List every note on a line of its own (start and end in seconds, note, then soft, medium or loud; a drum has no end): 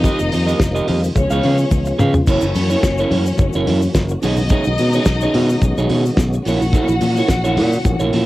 0.00 1.14 D#3 medium
0.00 1.13 G3 medium
0.00 1.11 A#3 medium
0.00 1.14 C4 medium
0.00 0.86 D#4 loud
0.00 1.14 F4 medium
0.00 0.86 D#5 loud
0.00 closed hi-hat medium
0.04 0.20 G4 medium
0.04 0.20 A#4 medium
0.04 0.19 D#5 medium
0.04 kick loud
0.04 muted conga soft
0.04 shaker medium
0.19 0.29 F1 medium
0.19 muted clean electric guitar stroke soft
0.19 shaker medium
0.32 0.53 F2 medium
0.32 muted clean electric guitar stroke soft
0.32 open hi-hat medium
0.32 muted conga soft
0.32 high conga medium
0.32 shaker medium
0.47 0.59 G4 medium
0.47 0.58 A#4 medium
0.47 0.58 D#5 medium
0.47 shaker medium
0.60 0.80 F1 medium
0.60 muted clean electric guitar stroke soft
0.60 kick loud
0.60 snare loud
0.60 closed hi-hat medium
0.60 muted conga soft
0.60 shaker loud
0.75 0.86 G4 medium
0.75 0.87 A#4 medium
0.75 0.87 D#5 medium
0.75 shaker medium
0.87 1.08 F2 loud
0.87 1.00 G4 medium
0.87 1.01 A#4 medium
0.87 1.01 D#5 medium
0.87 open hi-hat medium
0.87 low conga medium
1.02 muted clean electric guitar stroke medium
1.02 shaker medium
1.15 1.26 C#2 loud
1.15 2.26 C#3 medium
1.15 2.26 F3 medium
1.15 2.26 G#3 medium
1.15 2.26 B3 medium
1.15 1.98 C#4 medium
1.15 2.26 F4 medium
1.15 1.98 C#5 loud
1.15 muted clean electric guitar stroke soft
1.15 kick loud
1.15 closed hi-hat medium
1.15 high conga medium
1.15 low conga medium
1.15 shaker medium
1.30 1.40 C#2 medium
1.30 1.43 G#4 medium
1.30 1.44 B4 medium
1.30 1.44 F5 medium
1.30 shaker medium
1.43 1.64 C#3 medium
1.43 1.57 G#4 medium
1.43 1.57 B4 medium
1.43 1.57 F5 medium
1.43 open hi-hat medium
1.43 high conga loud
1.58 muted clean electric guitar stroke soft
1.58 shaker medium
1.71 1.91 C#2 loud
1.71 kick loud
1.71 high tom medium
1.71 muted conga soft
1.71 shaker medium
1.85 muted clean electric guitar stroke medium
1.85 shaker medium
1.99 2.20 C#3 loud
1.99 2.15 G#4 medium
1.99 2.14 B4 loud
1.99 2.13 F5 medium
1.99 mid tom loud
1.99 muted conga soft
1.99 high conga soft
1.99 shaker medium
2.14 muted clean electric guitar stroke soft
2.14 floor tom loud
2.14 low conga medium
2.14 shaker soft
2.26 2.38 F#1 loud
2.26 4.20 E3 medium
2.26 4.20 F#3 medium
2.26 4.20 A#3 medium
2.26 4.20 C#4 medium
2.26 3.91 C#4 loud
2.26 2.44 E4 medium
2.26 4.20 F#4 medium
2.26 2.43 A#4 medium
2.26 3.91 C#5 loud
2.26 2.42 C#5 medium
2.26 kick loud
2.26 crash loud
2.26 muted conga soft
2.26 shaker medium
2.41 2.52 F#1 loud
2.41 muted clean electric guitar stroke soft
2.41 shaker medium
2.54 2.75 F#2 medium
2.54 muted clean electric guitar stroke soft
2.54 open hi-hat medium
2.54 high conga medium
2.54 shaker medium
2.70 2.82 E4 medium
2.70 2.82 A#4 medium
2.70 2.81 C#5 medium
2.70 shaker medium
2.82 3.03 F#1 medium
2.82 kick loud
2.82 snare loud
2.82 closed hi-hat medium
2.82 muted conga soft
2.82 shaker loud
2.98 3.11 E4 medium
2.98 3.12 A#4 medium
2.98 3.12 C#5 medium
2.98 shaker medium
3.11 3.31 F#2 loud
3.11 3.24 E4 medium
3.11 3.25 A#4 medium
3.11 3.25 C#5 medium
3.11 open hi-hat medium
3.11 muted conga soft
3.11 low conga medium
3.26 muted clean electric guitar stroke medium
3.26 shaker medium
3.38 3.49 F#1 loud
3.38 kick loud
3.38 closed hi-hat medium
3.38 muted conga soft
3.38 high conga medium
3.38 low conga medium
3.38 shaker medium
3.42 muted clean electric guitar stroke soft
3.53 3.64 F#1 loud
3.53 3.66 E4 medium
3.53 3.67 A#4 medium
3.53 3.68 C#5 medium
3.53 shaker medium
3.67 3.87 F#2 loud
3.67 3.80 E4 medium
3.67 3.80 A#4 medium
3.67 3.81 C#5 medium
3.67 open hi-hat medium
3.67 muted conga soft
3.67 high conga loud
3.82 muted clean electric guitar stroke soft
3.82 shaker medium
3.94 4.15 F#1 loud
3.94 muted clean electric guitar stroke soft
3.94 kick loud
3.94 snare loud
3.94 closed hi-hat medium
3.94 muted conga soft
3.94 shaker medium
4.09 muted clean electric guitar stroke medium
4.09 shaker medium
4.22 4.53 B1 loud
4.22 6.43 D#3 medium
4.22 6.43 G#3 medium
4.22 6.43 B3 medium
4.22 8.26 C#4 medium
4.22 6.14 D#4 medium
4.22 4.39 D#4 medium
4.22 8.26 F#4 medium
4.22 4.39 G#4 medium
4.22 4.38 C#5 loud
4.22 6.14 D#5 loud
4.22 open hi-hat medium
4.22 muted conga soft
4.22 high conga soft
4.22 shaker medium
4.36 muted clean electric guitar stroke medium
4.36 low conga medium
4.36 shaker medium
4.49 4.67 D#4 medium
4.49 4.66 G#4 loud
4.49 4.65 C#5 loud
4.49 kick loud
4.49 closed hi-hat medium
4.49 muted conga soft
4.49 shaker medium
4.64 4.76 B1 loud
4.64 muted clean electric guitar stroke soft
4.64 shaker medium
4.78 4.99 B2 loud
4.78 muted clean electric guitar stroke soft
4.78 open hi-hat medium
4.78 muted conga soft
4.78 high conga medium
4.78 shaker medium
4.93 5.06 D#4 medium
4.93 5.06 G#4 medium
4.93 5.05 C#5 medium
4.93 shaker medium
5.05 5.26 B1 medium
5.05 muted clean electric guitar stroke medium
5.05 kick loud
5.05 snare loud
5.05 closed hi-hat medium
5.05 shaker loud
5.21 5.35 D#4 medium
5.21 5.36 G#4 medium
5.21 5.37 C#5 medium
5.21 shaker medium
5.34 5.54 B2 loud
5.34 5.48 D#4 medium
5.34 5.49 G#4 medium
5.34 5.49 C#5 medium
5.34 open hi-hat medium
5.34 muted conga soft
5.34 low conga medium
5.49 muted clean electric guitar stroke medium
5.49 shaker medium
5.61 5.72 B1 loud
5.61 muted clean electric guitar stroke soft
5.61 kick loud
5.61 closed hi-hat medium
5.61 high conga medium
5.61 low conga medium
5.61 shaker medium
5.77 5.87 B1 medium
5.77 5.89 D#4 medium
5.77 5.90 G#4 medium
5.77 5.91 C#5 medium
5.77 shaker medium
5.89 6.10 B2 loud
5.89 6.03 D#4 medium
5.89 6.04 G#4 medium
5.89 6.04 C#5 medium
5.89 open hi-hat medium
5.89 high conga medium
6.06 muted clean electric guitar stroke soft
6.06 shaker medium
6.17 6.37 B1 loud
6.17 kick loud
6.17 snare loud
6.17 closed hi-hat medium
6.17 muted conga soft
6.17 shaker medium
6.33 muted clean electric guitar stroke soft
6.33 shaker medium
6.45 6.76 A#1 loud
6.45 8.26 E3 medium
6.45 8.26 F#3 medium
6.45 8.26 A#3 medium
6.45 6.63 E4 medium
6.45 8.26 F#4 loud
6.45 6.62 A#4 medium
6.45 6.61 C#5 loud
6.45 8.26 F#5 loud
6.45 open hi-hat medium
6.45 muted conga soft
6.45 high conga soft
6.45 shaker medium
6.60 muted clean electric guitar stroke medium
6.60 low conga medium
6.60 shaker medium
6.73 6.94 E4 loud
6.73 6.89 A#4 loud
6.73 6.88 C#5 loud
6.73 kick loud
6.73 closed hi-hat medium
6.73 muted conga soft
6.73 shaker medium
6.88 6.98 A#1 loud
6.88 muted clean electric guitar stroke soft
6.88 shaker medium
7.01 7.21 A#2 loud
7.01 muted clean electric guitar stroke soft
7.01 open hi-hat medium
7.01 muted conga soft
7.01 high conga medium
7.01 shaker medium
7.17 7.29 E4 medium
7.17 7.29 A#4 medium
7.17 7.29 C#5 medium
7.17 shaker medium
7.28 7.58 A#1 medium
7.28 muted clean electric guitar stroke soft
7.28 kick loud
7.28 snare loud
7.28 closed hi-hat medium
7.28 muted conga soft
7.28 shaker loud
7.44 7.57 E4 medium
7.44 7.57 A#4 medium
7.44 7.58 C#5 medium
7.44 shaker medium
7.56 7.77 A#2 loud
7.56 7.70 E4 medium
7.56 7.71 A#4 medium
7.56 7.71 C#5 medium
7.56 open hi-hat medium
7.56 low conga medium
7.73 muted clean electric guitar stroke soft
7.73 shaker medium
7.85 7.96 A#1 loud
7.85 muted clean electric guitar stroke soft
7.85 kick loud
7.85 closed hi-hat medium
7.85 muted conga soft
7.85 high conga medium
7.85 low conga medium
7.85 shaker medium
8.00 8.09 A#1 medium
8.00 8.13 E4 medium
8.00 8.13 A#4 medium
8.00 8.14 C#5 medium
8.00 shaker medium
8.13 8.26 A#2 loud
8.13 8.26 E4 medium
8.13 8.26 A#4 medium
8.13 8.26 C#5 medium
8.13 open hi-hat medium
8.13 muted conga soft
8.13 high conga medium